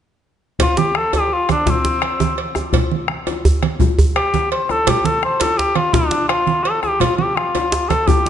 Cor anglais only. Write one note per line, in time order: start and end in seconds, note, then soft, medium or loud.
0.62 0.79 F4 medium
0.77 0.98 G4 medium
0.97 1.14 A4 medium
1.15 1.34 G4 medium
1.33 1.50 F4 medium
1.51 1.71 D4 medium
1.70 2.39 C4 medium
4.16 4.49 G4 loud
4.51 4.72 C5 medium
4.71 4.90 A4 medium
4.89 5.07 G4 medium
5.05 5.23 A4 medium
5.24 5.42 C5 medium
5.41 5.59 A4 medium
5.57 5.77 G4 medium
5.76 5.95 F4 medium
5.94 6.28 D4 medium
6.28 6.65 F4 medium
6.63 6.81 A4 medium
6.82 7.01 G4 medium
7.00 7.16 F4 medium
7.17 7.37 G4 medium
7.35 7.90 F4 medium
7.89 8.09 A4 medium
8.07 8.29 G4 medium